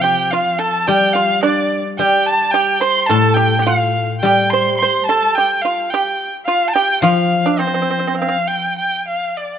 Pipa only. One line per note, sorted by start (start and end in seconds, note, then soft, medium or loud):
0.04 0.30 G4 medium
0.33 0.59 F4 medium
0.59 0.86 A4 medium
0.88 1.14 G4 medium
1.15 1.41 F4 medium
1.43 1.82 D4 medium
1.99 2.51 G4 medium
2.54 2.80 G4 medium
2.81 3.08 C5 medium
3.09 3.36 A4 medium
3.36 3.57 G4 medium
3.59 3.66 G4 medium
3.67 4.07 F4 medium
4.25 4.51 G4 medium
4.53 4.79 C5 medium
4.82 5.08 C5 medium
5.09 5.35 A4 medium
5.38 5.63 G4 medium
5.65 5.91 F4 medium
5.94 6.32 G4 medium
6.48 6.74 F4 medium
6.75 7.02 G4 medium
7.04 7.43 F4 medium
7.46 7.59 D4 medium
7.59 7.66 C4 medium
7.67 7.73 C4 soft
7.74 7.81 C4 medium
7.82 7.89 C4 soft
7.90 7.98 C4 soft
7.99 8.06 C4 soft
8.07 8.14 C4 medium
8.15 8.20 C4 soft
8.22 8.27 C4 medium
8.28 8.36 C4 medium